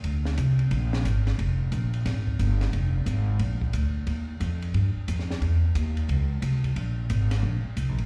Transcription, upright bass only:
X:1
M:4/4
L:1/8
Q:"Swing" 1/4=179
K:Bbmix
V:1 name="Upright bass" clef=bass
D,,2 C,,2 B,,,2 A,,,2 | F,,,2 B,,,2 A,,,2 G,,,2 | F,,,2 A,,,2 B,,,2 D,,2 | E,,2 F,,2 G,, z F,,2 |
=E,,2 _E,,2 _D,,2 C,,2 | B,,,2 A,,,2 B,,, z (3C,, B,,, A,,, |]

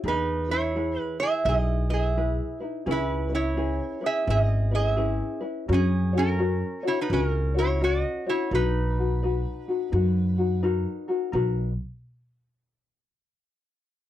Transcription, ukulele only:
X:1
M:4/4
L:1/8
Q:"Swing" 1/4=85
K:B
V:1 name="Ukulele"
[DGB] [EB] [EGB] [EB] [DEGB] [EB] [EGB] [DEB] | [CEGB] [CEB] [CEGB] [CEB] [CEGB] [CEB] [CEGB] [CEB] | [CFAc] [CFc] [CFAc] [CFc] [CFAc] [CFc] [CFAc] [CFc] | [DFB] [DF] [DFB] [DF] [DFB] [DF] [DFAB] [DFA] |
[DFAB] z6 z |]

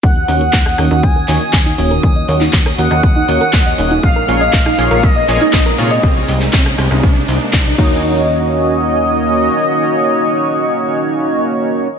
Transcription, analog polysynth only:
X:1
M:4/4
L:1/16
Q:1/4=120
K:Ebdor
V:1 name="Analog polysynth"
z2 [E,B,DEGd] z3 [E,B,DEGd] [E,B,DEGd] z2 [E,B,DEGd] z3 [E,B,DEGd] z | z2 [E,B,DEGd] z3 [E,B,DEGd] [E,B,DEGd] z2 [E,B,DEGd] z3 [B,,B,DEGd] z | z2 [B,,B,DFAd] z3 [B,,B,DFAd] [B,,B,DFAd] z2 [B,,B,DFAd] z3 [C,B,DFAd] z | z12 z2 [B,DEGd]2- |
[B,DEGd]16- | [B,DEGd]16 |]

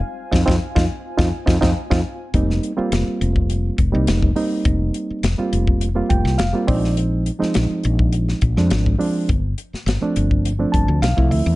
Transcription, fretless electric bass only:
X:1
M:4/4
L:1/16
Q:1/4=104
K:Fdor
V:1 name="Fretless electric bass" clef=bass
z2 F,, F,, z F,, z2 F,, z F,, F,, z F,, z2 | F,,,2 z2 F,,, z F,,,4 F,,, C,, F,,,2 z2 | F,,,2 z2 F,,, z F,,,4 F,,, C,, F,,, z B,,,2- | B,,,3 z B,,, z B,,,4 B,,, F,, A,,,2 z2 |
G,,,2 z2 G,,, z G,,,4 G,,, D,, =B,,, C,, D,, =E,, |]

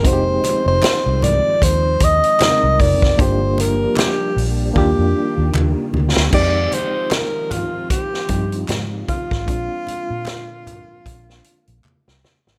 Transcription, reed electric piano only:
X:1
M:4/4
L:1/8
Q:"Swing 16ths" 1/4=76
K:Fdor
V:1 name="Reed electric piano"
[A,CE_G=G]6 [A,CEB]2 | [B,DFG]4 [B,DFG]4 | [A,CEG]4- [A,CEG] [F,CEG]3 | [A,CDF]8 |]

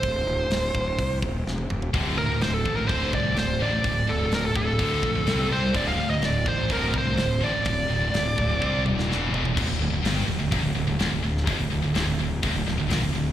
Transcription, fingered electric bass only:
X:1
M:4/4
L:1/16
Q:1/4=126
K:Cdor
V:1 name="Fingered electric bass" clef=bass
D,,,2 D,,,2 D,,,2 D,,,2 C,,2 E,,,2 =E,,,2 E,,,2 | D,,,2 D,,2 D,,,2 A,,,2 D,,,2 C,,2 D,,,2 A,,,2 | D,,,2 D,,,2 D,,,2 D,,,2 D,,2 B,,,2 C,,2 C,,2 | D,,,2 D,,2 D,,,2 A,,,2 D,,,2 C,,2 D,,,2 A,,,2 |
D,,,2 D,,,2 D,,,2 D,,,2 C,,2 E,,,2 =E,,,2 E,,,2 | D,,, D,,, D,,, D,,, G,,,2 D,,, D,,, =E,,, D,,, D,,, D,,, D,,, D,,, D,,,2 | F,,, D,,, D,,, D,,, D,,, D,,, D,,,2 =E,,, D,,, D,,, D,,, B,,, D,,, D,,,2 |]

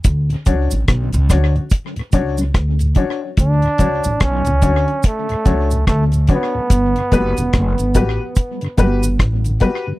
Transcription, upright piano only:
X:1
M:4/4
L:1/16
Q:"Swing 16ths" 1/4=72
K:D
V:1 name="Upright piano"
z2 [DFc] z3 [DFc] [Fc] z2 [DFc] z3 [DFc] [Fc] | z2 [DFc] z3 [DFc] z3 [DFc] z3 [DFc] z | z2 [FGB] z3 [FGB] z3 [FGB] z3 [FGB] z |]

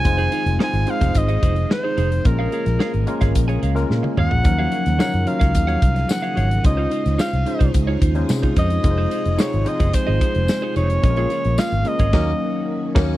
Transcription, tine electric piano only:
X:1
M:4/4
L:1/16
Q:1/4=109
K:Ebdor
V:1 name="Tine electric piano"
[A,CEFc]3 z [A,CEFc]2 [A,CEFc]6- [A,CEFc] z3 | [A,B,DFB]4- [A,B,DFB] z [A,B,DFB]4 z [A,B,DFB]4 z | [F,G,DEB]3 z [G,DEFB]2 [G,DEFB]6- [G,DEFB] z3 | [A,DEFc]4- [A,DEFc] z [A,DEFc]4 z [A,DEFc]4 z |
[A,CEFBc]3 z [A,CEFc]2 [A,CEFc]6- [A,CEFc] z3 | [A,B,DFAB]4- [A,B,DFAB] z [A,B,DFB]2 [G,B,DEB]2 z4 [G,B,DEB]2 |]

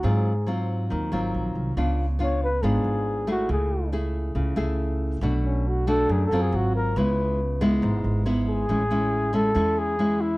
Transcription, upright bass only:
X:1
M:4/4
L:1/8
Q:1/4=139
K:C#phr
V:1 name="Upright bass" clef=bass
G,,4 ^D,, G,,, ^A,,, ^B,,, | C,,4 G,,, G,,,3 | C,,4 C,, C,,3 | B,,,4 F,, F,, G,,,2 |
C,,4 G,,, G,,,3 | [K:A] A,,,4 E,,4 |]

